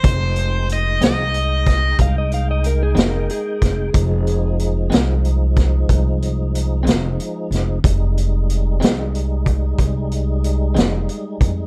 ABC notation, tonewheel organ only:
X:1
M:12/8
L:1/8
Q:3/8=62
K:Fm
V:1 name="Tonewheel organ" clef=bass
[A,Eg]12 | [F,A,E]12 | [G,A,E]12 |]